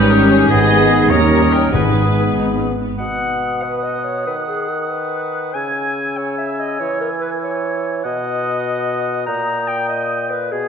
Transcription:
Already playing: double bass section G#1, cello section G#2, trombone section D#3 G3, french horn section C#4 D#4, bassoon C#4, oboe G4, clarinet G4, violin section B4 C#5, flute D#6
0.10 viola section C#4 G4, violin section A#4
0.30 violin section G#4
0.50 double bass section G#1, cello section G#2, trombone section G#3, bassoon B3, french horn section B3 D#4, oboe G#4, clarinet G#4, violin section D#5, flute D#6
0.71 viola section B3 G#4
1.10 double bass section D#2, cello section D#2, trombone section G3, bassoon C#4, french horn section C#4, viola section C#4 G4, clarinet G4, violin section A#4 A#5, oboe C#5, flute D#6
1.33 viola section C#4 G4
1.53 oboe A#4, violin section G5
1.72 double bass section G#1, cello section G#2, timpani G#2, trombone section D#3 G#3, bassoon B3, french horn section B3, clarinet G#4, violin section B4 G#5, oboe B4, flute D#6
1.95 viola section B3 G#4
2.35 double bass section G#1, cello section G#2, viola section D#4
2.58 viola section C#4
2.78 viola section B3
2.98 bassoon B2, clarinet F#5, oboe F#5, flute D#6
3.63 clarinet B4
3.83 clarinet D#5
4.04 clarinet C#5
4.27 bassoon D#3, clarinet B4
4.47 clarinet G#4
4.69 clarinet A#4
4.90 clarinet B4
5.54 bassoon C#3, oboe G#5, clarinet G#5, flute E6
6.17 clarinet C#5
6.38 clarinet E5
6.60 clarinet D#5
6.79 bassoon E3, clarinet C#5
7.01 clarinet A#4
7.21 clarinet B4
7.43 clarinet C#5
8.04 bassoon B2, clarinet D#5, oboe F#5, flute D#6
9.26 bassoon A#2, oboe G5, clarinet A#5
9.68 clarinet G5
9.89 clarinet D#5
10.30 clarinet B4
10.52 bassoon B2, clarinet G#4, oboe G#5, flute D#6

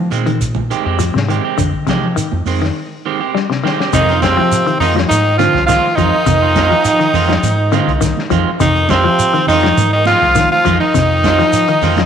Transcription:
0.10 fingered electric bass A#2, clean electric guitar D#3 G#3 C4, muted clean electric guitar stroke, closed hi-hat, high conga, shekere
0.26 clean electric guitar D#3, closed hi-hat, low conga
0.40 kick, closed hi-hat, high conga, shekere
0.55 kick, high conga
0.70 clean electric guitar D#3 G#3 C4 G4, closed hi-hat, shekere
0.85 fingered electric bass F2, clean electric guitar G#3 C4 G4
0.99 clean electric guitar F3, closed hi-hat, high conga, shekere
1.14 fingered electric bass G#2, clean electric guitar C3, snare
1.28 clean electric guitar D#3 G#3 C4 G4, closed hi-hat, shekere
1.44 clean electric guitar G#3 C4 G4
1.58 fingered electric bass F2, clean electric guitar D3, kick, closed hi-hat, high conga, low conga, shekere
1.74 kick
1.87 clean electric guitar C3 D#3 G#3 G4, fingered electric bass F3, kick, snare, closed hi-hat, high conga, low conga, shekere
2.03 fingered electric bass F3
2.16 clean electric guitar D#3, closed hi-hat, high conga, shekere
2.32 fingered electric bass F2, high conga
2.46 fingered electric bass F2, clean electric guitar D#3 G#3 C4, open hi-hat, high conga, shekere
2.62 clean electric guitar D#3, snare
3.06 clean electric guitar D#3 G#3 C4 G4
3.21 clean electric guitar G#3 C4 G4
3.35 clean electric guitar G3, snare
3.50 clean electric guitar C3, snare
3.63 clean electric guitar D#3 G#3 C4 G4, snare
3.79 clean electric guitar G#3 C4 G4, snare
3.92 fingered electric bass F2, clean electric guitar C3 D#3 G#3 C4, trombone section D#3, alto saxophone D#4, tenor saxophone D#4, muted clean electric guitar stroke, kick, closed hi-hat, high conga, shekere
4.09 clean electric guitar C4 F4, snare, closed hi-hat
4.21 trombone section C3, clean electric guitar D#3 G#3 F4, tenor saxophone C4, alto saxophone C4, kick, snare, closed hi-hat, high conga, shekere
4.37 fingered electric bass F3, clean electric guitar F3
4.51 closed hi-hat, high conga, shekere
4.67 clean electric guitar D#3, closed hi-hat
4.78 fingered electric bass F2, trombone section D#3, clean electric guitar D#3 G#3 C4 F4, alto saxophone D#4, tenor saxophone D#4, open hi-hat, low conga, shekere
4.95 clean electric guitar F3, snare, closed hi-hat, high conga
5.07 fingered electric bass G#2, trombone section D#3, alto saxophone D#4, tenor saxophone D#4, closed hi-hat, high conga, shekere
5.37 clean electric guitar D3 D#3 C4 F4, trombone section F3, alto saxophone F4, tenor saxophone F4, snare, closed hi-hat, high conga, shekere
5.54 fingered electric bass C2, kick, snare
5.65 clean electric guitar D#3 G#3, trombone section F3, alto saxophone F4, tenor saxophone F4, high conga, shekere
5.69 clean electric guitar C4 F4, snare, closed hi-hat
5.95 fingered electric bass F2, trombone section D#3, clean electric guitar F3 G#3 C4 F4, tenor saxophone D#4, alto saxophone D#4, muted clean electric guitar stroke, kick, closed hi-hat, low conga, shekere
6.26 fingered electric bass F2, clean electric guitar C3, kick, closed hi-hat, high conga, low conga, shekere
6.42 clean electric guitar G#3 C4 F4
6.56 clean electric guitar G#3 C4 F4, muted clean electric guitar stroke, kick, snare, closed hi-hat, high conga, shekere
6.70 clean electric guitar F3, fingered electric bass F3, closed hi-hat
6.85 closed hi-hat, high conga, shekere
7.00 clean electric guitar D#3, closed hi-hat
7.13 fingered electric bass F2, clean electric guitar D#3 G#3 C4 F4, open hi-hat, low conga, shekere
7.29 clean electric guitar F3, snare, closed hi-hat, high conga
7.43 fingered electric bass G#2, closed hi-hat, high conga, low conga, shekere
7.72 clean electric guitar D3 D#3 G#3 C4 F4, closed hi-hat, high conga, shekere
7.88 fingered electric bass C2, kick, closed hi-hat
8.01 clean electric guitar D#3, snare, closed hi-hat, high conga, shekere
8.17 snare, high conga
8.30 fingered electric bass F2, clean electric guitar D#3 F3 G#3 C4 F4, kick, closed hi-hat, high conga, low conga, shekere
8.59 fingered electric bass F2, clean electric guitar C3, trombone section D#3, alto saxophone D#4, tenor saxophone D#4, kick, closed hi-hat, high conga, low conga, shekere
8.76 closed hi-hat
8.89 trombone section C3, clean electric guitar D#3 G#3 C4 F4, alto saxophone C4, tenor saxophone C4, kick, snare, closed hi-hat, high conga, shekere
9.04 clean electric guitar F3, fingered electric bass F3
9.18 closed hi-hat, high conga, shekere
9.34 clean electric guitar D#3, closed hi-hat
9.47 fingered electric bass F2, trombone section D#3, clean electric guitar D#3 G#3 C4 F4, tenor saxophone D#4, alto saxophone D#4, snare, open hi-hat, low conga, shekere
9.63 clean electric guitar F3, snare, closed hi-hat, high conga
9.77 fingered electric bass G#2, closed hi-hat, high conga, low conga, shekere
9.92 trombone section D#3, alto saxophone D#4, tenor saxophone D#4
10.05 clean electric guitar D#3 G#3 C4 F4, trombone section F3, tenor saxophone F4, alto saxophone F4, closed hi-hat, high conga, shekere
10.22 fingered electric bass C2, kick
10.35 clean electric guitar D#3, snare, closed hi-hat, high conga, shekere
10.50 trombone section F3, tenor saxophone F4, alto saxophone F4, high conga
10.65 fingered electric bass F2, clean electric guitar D#3 F3 G#3 C4 F4, kick, closed hi-hat, high conga, low conga, shekere
10.80 trombone section D#3, alto saxophone D#4, tenor saxophone D#4
10.94 fingered electric bass F2, clean electric guitar C3, kick, snare, closed hi-hat, high conga, shekere
11.24 clean electric guitar D#3 G#3 C4 F4, kick, snare, closed hi-hat, high conga, shekere
11.39 clean electric guitar F3, fingered electric bass F3, snare, closed hi-hat
11.53 closed hi-hat, high conga, shekere
11.68 clean electric guitar D#3, closed hi-hat
11.82 fingered electric bass F2, clean electric guitar D#3 G#3 C4 F4, snare, open hi-hat, low conga, shekere
11.96 clean electric guitar F3, snare, closed hi-hat, high conga

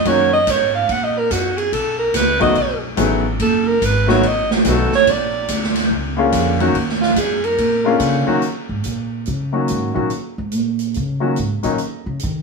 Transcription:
0.05 upright bass F#2, grand piano D#3 F#3 A#3 C#4 F#4, alto saxophone C#5, kick, ride
0.33 alto saxophone D#5
0.47 upright bass G#2, alto saxophone C#5, kick, hi-hat pedal, ride
0.75 alto saxophone F5
0.89 upright bass A#2, alto saxophone F#5, kick, ride
1.04 alto saxophone D#5
1.18 alto saxophone A#4
1.31 upright bass F#2, alto saxophone F#4, kick, hi-hat pedal, ride
1.58 alto saxophone G#4, ride
1.72 upright bass B1, alto saxophone A4, kick, ride
1.99 alto saxophone A#4
2.14 upright bass C#2, alto saxophone B4, kick, snare, hi-hat pedal, ride
2.40 grand piano D#3 F#3 A3 B3 F#4, alto saxophone D#5, kick, ride
2.55 upright bass B1, kick, ride
2.97 upright bass A1, grand piano D#3 F#3 A3 B3 G#4, kick, hi-hat pedal, ride
3.40 upright bass F#1, alto saxophone A4, kick, ride
3.67 alto saxophone A#4
3.82 upright bass G#1, alto saxophone B4, kick, hi-hat pedal, ride
4.07 grand piano D#3 F#3 A3 B3 F#4, alto saxophone C#5, snare
4.23 upright bass A1, alto saxophone D#5, kick, ride
4.51 alto saxophone F#4, snare
4.65 upright bass B1, grand piano D#3 F#3 A3 B3 F#4, kick, hi-hat pedal, ride
4.69 alto saxophone A4
4.92 alto saxophone C#5, muted upright bass stroke, snare
5.07 upright bass A#1, alto saxophone D5, kick, ride
5.48 upright bass D2, kick, hi-hat pedal, ride
5.63 snare
5.75 snare, ride
5.91 upright bass C#2, kick
6.17 grand piano D3 G#3 A#3 C#4 F4
6.32 upright bass F2, kick, hi-hat pedal, ride
6.60 grand piano D#3 F#3 A#3 C#4 F#4, ride
6.74 upright bass D#2, kick, ride
6.89 snare
7.02 alto saxophone F4, snare
7.16 upright bass F#2, alto saxophone G#4, kick, hi-hat pedal, ride
7.44 alto saxophone A#4, ride
7.58 upright bass A#2, kick, ride
7.85 grand piano D3 G#3 A#3 C#4 F4
8.00 upright bass C#3, kick, hi-hat pedal, ride
8.27 grand piano D#3 F#3 A#3 C#4 F#4, muted upright bass stroke
8.42 closed hi-hat
8.69 upright bass G#2
8.84 upright bass A#2, closed hi-hat
9.26 upright bass C#3, closed hi-hat
9.52 grand piano D#3 F#3 A#3 C#4 F#4
9.68 upright bass G#2, closed hi-hat
9.94 upright bass A#2, grand piano D#3 F#3 A#3 C#4 F#4
10.10 closed hi-hat
10.38 upright bass G#2
10.52 upright bass A#2, closed hi-hat
10.79 closed hi-hat
10.94 upright bass C#3, closed hi-hat
11.20 grand piano D#3 F#3 A#3 C#4 F#4
11.36 upright bass G#2, closed hi-hat
11.63 upright bass A#2, grand piano D#3 F#3 A#3 C#4 D#4, closed hi-hat
11.78 closed hi-hat
12.06 upright bass C#3
12.19 closed hi-hat
12.23 upright bass D#3

